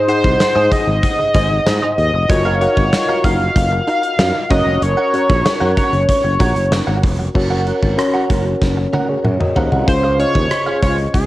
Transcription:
Already playing: G#2 D#4 G#4 C5 D#5
0.08 D#4 G#4 C5 D#5 F#5, closed hi-hat
0.24 C2, kick
0.40 muted clean electric guitar stroke, snare, closed hi-hat
0.55 G#2 D#4 G#4 C5 D#5
0.71 D#4 G#4 C5 D#5, kick, closed hi-hat
0.87 G#1, muted clean electric guitar stroke
1.03 kick, closed hi-hat
1.19 muted clean electric guitar stroke
1.34 G#1 D#4 G#4 C5 D#5, kick, closed hi-hat
1.51 muted clean electric guitar stroke
1.66 G#2, muted clean electric guitar stroke, snare, closed hi-hat
1.82 D#4 G#4 C5 D#5
1.98 D#2 D#5, muted clean electric guitar stroke, closed hi-hat
2.14 F1, muted clean electric guitar stroke
2.29 F#1 F4 F#4 A#4 C#5 D#5, muted clean electric guitar stroke, kick, closed hi-hat
2.45 D#4 F#4 A#4 F5
2.61 D#4 F#4 A#4 C#5 F5 F#5, closed hi-hat
2.77 G#1, muted clean electric guitar stroke, kick
2.93 muted clean electric guitar stroke, snare, closed hi-hat
3.09 D#4 F#4 A#4 F5
3.24 F#1 D#4 F#4 A#4 F5, kick, closed hi-hat
3.40 muted clean electric guitar stroke
3.56 F#1, kick, closed hi-hat
3.72 muted clean electric guitar stroke
3.87 D#4 F#4 A#4 F5, closed hi-hat
4.03 muted clean electric guitar stroke, closed hi-hat
4.19 F#2, muted clean electric guitar stroke, snare, closed hi-hat
4.35 muted clean electric guitar stroke
4.50 F#1 C#4 F#4 A#4 C#5 D#5 F#5, kick, closed hi-hat
4.66 F1 C#4 F#4 A#4 F#5
4.82 F#1 C#5, muted clean electric guitar stroke, closed hi-hat
4.97 C#4 F#4 A#4 F#5
5.13 C#4 F#4 A#4 C#5 F#5, closed hi-hat
5.29 A#1, muted clean electric guitar stroke, kick
5.45 muted clean electric guitar stroke, snare, closed hi-hat
5.60 F#2 C#4 F#4 A#4 F#5
5.76 C#4 F#4 A#4 C#5 F#5, kick, closed hi-hat
5.92 F#1, muted clean electric guitar stroke, closed hi-hat
6.09 C#5, kick, closed hi-hat
6.24 F#1, muted clean electric guitar stroke
6.40 A#1 C#4 F#4 A#4 F#5, kick, closed hi-hat
6.56 F#1, muted clean electric guitar stroke, closed hi-hat
6.72 muted clean electric guitar stroke, snare, closed hi-hat
6.87 G#1 C#4 F#4 A#4 F#5
7.03 F1, muted clean electric guitar stroke, kick, open hi-hat
7.19 muted clean electric guitar stroke
7.35 F#1 C#4 F#4 A#4 C#5, muted clean electric guitar stroke, kick, crash
7.50 C#4 F#4 A#4 F#5
7.67 C#4 F#4 A#4 F#5, closed hi-hat
7.82 G#1, muted clean electric guitar stroke, kick
7.97 C#4 F#4 A#4 C#5, muted clean electric guitar stroke, cross-stick, closed hi-hat
8.14 C#4 F#4 A#4 F#5
8.29 F#1 C#4 F#4 A#4 F#5, kick, closed hi-hat
8.45 muted clean electric guitar stroke
8.62 F#1, kick, snare
8.77 muted clean electric guitar stroke
8.93 C#4 F#4 A#4 F#5, high tom
9.09 G#4 C#5, muted clean electric guitar stroke
9.24 F#2, muted clean electric guitar stroke, mid tom
9.40 A#4 D#5, muted clean electric guitar stroke, mid tom
9.56 D#2 C#4 F#4 A#4 C5 F5 F#5, floor tom
9.72 C2 C#4 F#4 A#4 C#5 F#5, floor tom
9.87 C#2 C#3 C#4 F4 G#4 C5, kick, closed hi-hat
10.03 F4 G#4 C5 F5
10.19 C#4 F4 G#4 C5 C#5 D#5 F5, closed hi-hat
10.35 D#2, muted clean electric guitar stroke, kick
10.51 muted clean electric guitar stroke, cross-stick, closed hi-hat
10.66 F4 G#4 C5 F5
10.82 C#2 F4 G#4 C5 C#5 F5, kick, closed hi-hat
10.98 muted clean electric guitar stroke, closed hi-hat
11.14 C#2 G#4, kick, closed hi-hat

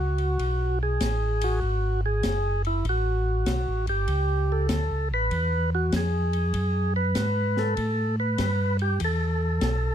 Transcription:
Already playing: C#2 F#4
0.18 ride
0.39 B1, kick, ride
0.83 G#4
1.00 A1, kick, snare, hi-hat pedal, ride
1.41 F#4, ride
1.62 G#1, kick
2.06 G#4
2.23 F#1, kick, snare, hi-hat pedal, ride
2.65 E4, ride
2.85 A1, kick, ride
2.89 F#4
3.46 B1, kick, snare, hi-hat pedal, ride
3.68 A1
3.87 G1 G4, ride
4.08 C#2, kick, ride
4.52 A4
4.69 D2, kick, snare, hi-hat pedal, ride
4.91 C#2
5.11 A1 B4
5.31 E2, kick, ride
5.75 F#4
5.92 F2 G#4, kick, snare, hi-hat pedal, ride
6.33 ride
6.54 F#2, kick, ride
6.96 B4
7.15 G#2, kick, snare, hi-hat pedal, ride
7.57 A4, snare
7.77 A2, kick, ride
8.20 B4
8.38 G2, kick, snare, hi-hat pedal, ride
8.79 G4, ride
9.00 E2, kick, ride
9.05 A4
9.61 B1, kick, snare, hi-hat pedal, ride

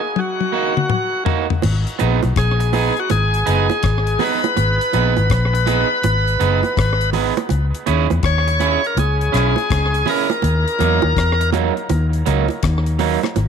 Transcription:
Already playing: G#4
0.16 F#4, high tom
0.41 high tom
0.52 A#3 D#4 F#4
0.77 mid tom
0.90 mid tom
1.25 A#3 D#4 F#4, floor tom
1.50 floor tom
1.62 G#1, crash, high bongo
1.87 closed hi-hat
1.99 A#1 B3 D#4 G#4, closed hi-hat, high bongo
2.23 B1, closed hi-hat, high bongo
2.36 A#1 G#4, kick, cross-stick, closed hi-hat
2.60 muted clean electric guitar stroke, closed hi-hat
2.73 B3 D#4 G#4, open hi-hat, high bongo
2.97 F#4, closed hi-hat
3.10 G#1 G#4, closed hi-hat, high bongo
3.34 closed hi-hat
3.46 F#1 B3 D#4 G#4, closed hi-hat
3.70 closed hi-hat, high bongo
3.83 G#1, kick, cross-stick, closed hi-hat
4.07 closed hi-hat
4.19 B3 D#4 G#4 B4, open hi-hat, low bongo
4.44 closed hi-hat, high bongo
4.57 G#1, closed hi-hat, high bongo
4.81 closed hi-hat
4.93 A#1 B3 D#4 G#4, closed hi-hat, high bongo
5.17 G#1, closed hi-hat, high bongo
5.30 A#1, kick, cross-stick, closed hi-hat
5.53 muted clean electric guitar stroke, closed hi-hat
5.66 B3 D#4 G#4, closed hi-hat, high bongo
6.04 G#1, closed hi-hat, high bongo
6.28 closed hi-hat
6.40 F#1 B3 D#4 G#4, closed hi-hat
6.63 closed hi-hat, high bongo
6.77 G#1, kick, cross-stick, closed hi-hat
7.01 closed hi-hat
7.13 B3 D#4 G#4, open hi-hat, low bongo
7.37 closed hi-hat, high bongo
7.49 C#2, closed hi-hat, high bongo
7.75 closed hi-hat
7.86 D#2 C#4 E4 G#4, closed hi-hat, high bongo
8.10 E2, closed hi-hat, high bongo
8.23 D#2 C#5, kick, cross-stick, closed hi-hat
8.47 muted clean electric guitar stroke, closed hi-hat
8.60 C#4 E4 G#4, closed hi-hat, high bongo
8.84 A#4, closed hi-hat
8.97 C#2 G#4, closed hi-hat, high bongo
9.21 closed hi-hat
9.32 B1 C#4 E4 G#4, cross-stick, closed hi-hat
9.56 closed hi-hat, high bongo
9.70 C#2, kick, cross-stick, closed hi-hat
9.94 closed hi-hat
10.06 C#4 E4 G#4 A#4, open hi-hat, low bongo
10.30 closed hi-hat, high bongo
10.42 D#2, closed hi-hat, high bongo
10.68 closed hi-hat
10.79 E2 F#3 A#3 D#4, closed hi-hat, high bongo
11.02 D#2, high bongo
11.17 E2, kick, cross-stick, closed hi-hat
11.41 muted clean electric guitar stroke, closed hi-hat
11.53 F#3 A#3 D#4, closed hi-hat, high bongo, low bongo
11.77 closed hi-hat
11.89 D#2, closed hi-hat, high bongo
12.13 closed hi-hat
12.26 C#2 F#3 A#3 D#4, closed hi-hat
12.48 closed hi-hat, high bongo
12.63 D#2, kick, cross-stick, closed hi-hat
12.86 closed hi-hat
12.99 F#3 A#3 D#4, open hi-hat, low bongo
13.23 cross-stick, closed hi-hat, high bongo
13.36 G#1, closed hi-hat, high bongo

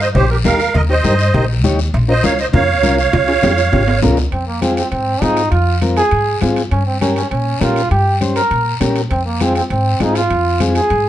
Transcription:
0.01 C5 D#5, short guiro
0.15 A#1 D#4 G4 C5 C#5, cowbell, high conga, low conga, long guiro
0.30 G4 A#4
0.45 D#2 D#4 G4 A#4 F5, high conga, low timbale, short guiro
0.60 short guiro
0.74 D#2 A#4 D#5, cowbell, high conga, low conga, long guiro
0.89 D#4 G4 C5 C#5 D#5
1.04 G2 D#4 G4 A#4, high conga, short guiro
1.19 short guiro
1.34 A#1 D#4 G4 A#4, cowbell, high conga, low conga, long guiro
1.64 D#2 D#4 G4 C#5, high conga, low conga, short guiro
1.79 short guiro
1.94 A#1, cowbell, high conga, long guiro
2.08 C#4 F4 A#4 C5 D#5
2.23 C#2 C#4 F4 A#4 C#5 F5, high conga, short guiro
2.39 C5 D#5, short guiro
2.53 F2 C#4 F4 A#4 C#5 F5, cowbell, high conga, low conga, long guiro
2.83 C2 C#4 F4 A#4, high conga, short guiro
2.98 C#5 F5, short guiro
3.13 C#2, cowbell, high conga, low conga, high timbale, long guiro
3.28 C#4 F4 G#4, high timbale
3.42 F2 C#4 F4 G4, high conga, low timbale, short guiro
3.58 high timbale, short guiro
3.72 G#1 C#4 F4 G4, cowbell, high conga, low conga, low timbale, long guiro
3.88 low timbale
4.02 C#2 C#4 F4 A#4, high conga, low timbale, short guiro
4.17 low timbale, short guiro
4.32 F2 C4, high conga, high timbale, long guiro
4.47 A#3
4.61 C4 F4 G#4, high conga, high timbale, short guiro
4.77 C4, high timbale, short guiro
4.91 G#2 C4, high conga, high timbale, long guiro
5.21 G#2 C4 D#4 F4 G#4, high conga, high timbale, low timbale, short guiro
5.37 high timbale, short guiro
5.51 F2 F4, high conga, high timbale, long guiro
5.82 C4 F4 A#4, high conga, high timbale, short guiro
5.97 G#4, high timbale, short guiro
6.11 G#2, high conga, high timbale, long guiro
6.41 G#2 C4 F4 G#4, high conga, high timbale, low timbale, short guiro
6.56 high timbale, short guiro
6.71 G2 C#4, high conga, high timbale, long guiro
6.86 C4
7.01 C#4 G4 A#4, high conga, high timbale, short guiro
7.16 C#4, high timbale, short guiro
7.31 A#2 C#4, high conga, high timbale, long guiro
7.61 A#2 C#4 F4 G4 A#4, high conga, high timbale, low timbale, short guiro
7.76 high timbale, short guiro
7.91 G2 G4, high conga, high timbale
8.21 C#4 G4 C5, high conga, high timbale, short guiro
8.36 A#4, high timbale, short guiro
8.51 A#2, high conga, high timbale, long guiro
8.80 A#2 C#4 G4 A#4, high conga, high timbale, low timbale, short guiro
8.96 high timbale, short guiro
9.11 F2 C4, high conga, high timbale, long guiro
9.26 A#3
9.40 C4 F4 G#4, high conga, high timbale, short guiro
9.55 C4, high timbale, short guiro
9.70 G#2 C4, high conga, high timbale, long guiro
10.00 G#2 C4 D#4 F4 G#4, high conga, high timbale, low timbale, short guiro
10.15 F4, high timbale, short guiro
10.30 F2, high conga, high timbale, long guiro
10.60 C4 F4 G#4, high conga, high timbale, short guiro
10.75 G#4, high timbale, short guiro
10.90 G#2, high conga, high timbale, long guiro

